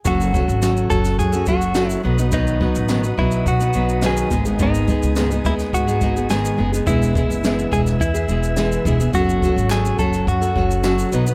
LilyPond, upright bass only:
\new Staff \with { instrumentName = "Upright bass" } { \clef bass \time 4/4 \key fis \dorian \tempo 4 = 106 fis,,8. gis,,8. fis,,8 fis,8 fis,,4 b,,8~ | b,,8. a,,8. b,,8 b,8 b,,4 gis,,8~ | gis,,8. cis,8. dis,8 gis,8 gis,,4 fis,,8 | e,,8. fis,,8. e,,8 e,8 e,,4 e,,8 |
fis,,8. gis,,8. fis,,8 fis,8 fis,,4 b,,8 | }